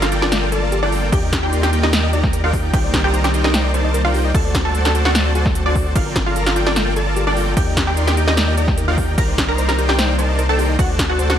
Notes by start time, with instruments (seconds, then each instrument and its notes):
Already playing: sub bass G1, ambient pad G3 A#3 F4 D5 A5
0.02 synth arpeggio sound F4, synth pluck F4 F5, snare, closed hi-hat
0.12 synth arpeggio sound F4, supersaw synth F4 A4 A#4 D5 G5, closed hi-hat
0.22 synth pluck D4 D5, synth arpeggio sound F4, snare
0.32 synth arpeggio sound F5, snare, closed hi-hat
0.42 synth arpeggio sound A#4
0.52 supersaw synth F4 A4 A#4 D5 A5, synth arpeggio sound A4, closed hi-hat
0.62 synth arpeggio sound D5
0.72 synth arpeggio sound G4, closed hi-hat
0.83 synth pluck D4 D5, supersaw synth F4 A4 A#4 D5 G5, synth arpeggio sound A#4
0.92 synth arpeggio sound F4, open hi-hat
1.03 synth arpeggio sound D5
1.12 sub bass D#2, ambient pad D#3 A#3 G4, supersaw synth D#4 G4 A#4 D5 G5, synth pluck G4 G5, synth arpeggio sound G4, kick, closed hi-hat, crash
1.23 synth arpeggio sound D#5
1.32 synth arpeggio sound G4, kick, snare, closed hi-hat
1.43 supersaw synth D#4 G4 A#4 D5 C6, synth pluck G4 G5, synth arpeggio sound A#5
1.53 synth arpeggio sound D5, closed hi-hat
1.63 synth arpeggio sound G4, synth pluck G4 G5, snare, closed hi-hat
1.73 supersaw synth D#4 G4 A#4 D5 G5, synth arpeggio sound G4, closed hi-hat
1.83 synth pluck D#4 D#5, synth arpeggio sound G4, snare
1.93 synth arpeggio sound A#5, snare, closed hi-hat
2.03 synth arpeggio sound D#5
2.13 supersaw synth D#4 G4 A#4 D5 A#5, synth arpeggio sound D5, closed hi-hat
2.24 synth arpeggio sound G5, kick, snare
2.33 synth arpeggio sound A#4, closed hi-hat
2.44 supersaw synth D#4 G4 A#4 D5 G5, synth pluck F4 F5, synth arpeggio sound D#5
2.53 synth arpeggio sound G4, kick, open hi-hat
2.64 synth arpeggio sound G5
2.73 sub bass C2, ambient pad C3 G3 D#4, supersaw synth D#4 A#4 C5 D5 G5, synth pluck G4 G5, synth arpeggio sound G4, kick, closed hi-hat, crash
2.84 synth arpeggio sound D5
2.94 synth arpeggio sound G4, kick, snare, closed hi-hat
3.04 supersaw synth D#4 A#4 C5 D5 A#5, synth pluck G4 G5, synth arpeggio sound G5
3.14 synth arpeggio sound C5, closed hi-hat
3.24 synth pluck G4 G5, synth arpeggio sound G4, snare, closed hi-hat
3.34 supersaw synth D#4 A#4 C5 D5 G5, synth arpeggio sound G4, closed hi-hat
3.44 synth pluck D#4 D#5, synth arpeggio sound G4, snare
3.54 synth arpeggio sound G5, snare, closed hi-hat
3.64 synth arpeggio sound D5
3.74 supersaw synth D#4 A#4 C5 D5 A5, synth arpeggio sound C5, closed hi-hat
3.84 synth arpeggio sound D#5
3.94 synth arpeggio sound A#4, closed hi-hat
4.05 supersaw synth D#4 A#4 C5 D5 G5, synth pluck F4 F5, synth arpeggio sound D5
4.14 synth arpeggio sound G4, open hi-hat
4.25 synth arpeggio sound D#5
4.34 sub bass D2, ambient pad F#3 C4, synth arpeggio sound F#4, supersaw synth F#4 A4 C5 D5 A5, synth pluck A4 A5, kick, closed hi-hat, crash
4.45 synth arpeggio sound D5
4.55 synth arpeggio sound F#4, kick, snare, closed hi-hat
4.65 supersaw synth F#4 A4 C5 D5 A5, synth pluck A4 A5, synth arpeggio sound A5
4.75 synth arpeggio sound C5, closed hi-hat
4.85 synth arpeggio sound F#4, synth pluck A4 A5, snare, closed hi-hat
4.95 synth arpeggio sound F#4, supersaw synth F#4 A4 C5 D5 A5, closed hi-hat
5.05 synth arpeggio sound F#4, synth pluck F#4 F#5, snare
5.15 synth arpeggio sound A5, snare, closed hi-hat
5.25 synth arpeggio sound D5
5.35 synth arpeggio sound F#4, supersaw synth F#4 A4 C5 D5 A5, closed hi-hat
5.46 synth arpeggio sound D5, kick, snare
5.55 synth arpeggio sound F#4, closed hi-hat
5.66 synth pluck D4 D5, synth arpeggio sound F#4, supersaw synth F#4 A4 C5 D5 A5
5.75 synth arpeggio sound F#4, kick, open hi-hat
5.86 synth arpeggio sound D5
5.95 sub bass G1, ambient pad G3 A#3 F4 D5 A5, synth arpeggio sound F4, synth pluck F4 F5, supersaw synth F4 A4 A#4 D5 G5, kick, closed hi-hat, crash
6.06 synth arpeggio sound A#4
6.16 synth arpeggio sound F4, kick, snare, closed hi-hat
6.26 supersaw synth F4 A4 A#4 D5 A#5, synth pluck F4 F5, synth arpeggio sound F5
6.36 synth arpeggio sound A4, closed hi-hat
6.46 synth arpeggio sound F4, synth pluck F4 F5, snare, closed hi-hat
6.56 supersaw synth F4 A4 A#4 D5 G5, synth arpeggio sound F4, closed hi-hat
6.66 synth pluck D4 D5, synth arpeggio sound F4, snare
6.76 synth arpeggio sound A4, snare, closed hi-hat
6.87 synth arpeggio sound A#4
6.96 supersaw synth F4 A4 A#4 D5 A5, synth arpeggio sound A4, closed hi-hat
7.07 synth arpeggio sound D5
7.16 synth arpeggio sound G4, closed hi-hat
7.27 synth pluck D4 D5, supersaw synth F4 A4 A#4 D5 G5, synth arpeggio sound A#4
7.36 synth arpeggio sound F4, open hi-hat
7.47 synth arpeggio sound D5
7.57 sub bass D#2, ambient pad D#3 A#3 G4, supersaw synth D#4 G4 A#4 D5 G5, synth arpeggio sound G4, synth pluck G4 G5, kick, closed hi-hat, crash
7.67 synth arpeggio sound D#5
7.77 synth arpeggio sound G4, kick, snare, closed hi-hat
7.87 supersaw synth D#4 G4 A#4 D5 C6, synth pluck G4 G5, synth arpeggio sound A#5
7.97 synth arpeggio sound D5, closed hi-hat
8.07 synth pluck G4 G5, synth arpeggio sound G4, snare, closed hi-hat
8.17 supersaw synth D#4 G4 A#4 D5 G5, synth arpeggio sound G4, closed hi-hat
8.27 synth pluck D#4 D#5, synth arpeggio sound G4, snare
8.37 synth arpeggio sound D5, snare, closed hi-hat
8.48 synth arpeggio sound D#5
8.57 supersaw synth D#4 G4 A#4 D5 A#5, synth arpeggio sound D5, closed hi-hat
8.68 synth arpeggio sound G5, kick, snare
8.78 synth arpeggio sound A#4, closed hi-hat
8.88 supersaw synth D#4 G4 A#4 D5 G5, synth pluck F4 F5, synth arpeggio sound D#5
8.98 synth arpeggio sound G4, kick, open hi-hat
9.08 synth arpeggio sound G5
9.18 sub bass C2, ambient pad C3 G3 D#4 D5, supersaw synth D#4 A#4 C5 D5 G5, synth arpeggio sound G4, synth pluck A#4 A#5, kick, closed hi-hat, crash
9.28 synth arpeggio sound D5
9.38 synth arpeggio sound G4, kick, snare, closed hi-hat
9.48 supersaw synth D#4 A#4 C5 D5 A#5, synth pluck A#4 A#5, synth arpeggio sound G5
9.58 synth arpeggio sound C5, closed hi-hat
9.68 synth arpeggio sound G4, synth pluck A#4 A#5, snare, closed hi-hat
9.78 supersaw synth D#4 A#4 C5 D5 G5, synth arpeggio sound G4, closed hi-hat
9.89 synth arpeggio sound G4, synth pluck G4 G5, snare
9.98 synth arpeggio sound C5, snare, closed hi-hat
10.09 synth arpeggio sound D5
10.18 supersaw synth D#4 A#4 C5 D5 A5, synth arpeggio sound C5, closed hi-hat
10.29 synth arpeggio sound D#5
10.39 synth arpeggio sound A#4, closed hi-hat
10.49 supersaw synth D#4 A#4 C5 D5 G5, synth pluck A4 A5, synth arpeggio sound D5
10.59 synth arpeggio sound G4, open hi-hat
10.69 synth arpeggio sound D#5
10.79 sub bass D2, ambient pad F#3 C4 D4, synth arpeggio sound F#4, synth pluck F#4 F#5, supersaw synth F#4 A4 C5 D5 A5, kick, closed hi-hat, crash
10.89 synth arpeggio sound D5
10.99 synth arpeggio sound F#4, kick, snare, closed hi-hat
11.09 synth pluck F#4 F#5, supersaw synth F#4 A4 C5 D5 A5, synth arpeggio sound A5
11.19 synth arpeggio sound C5, closed hi-hat
11.30 synth arpeggio sound F#4, synth pluck F#4 F#5, snare, closed hi-hat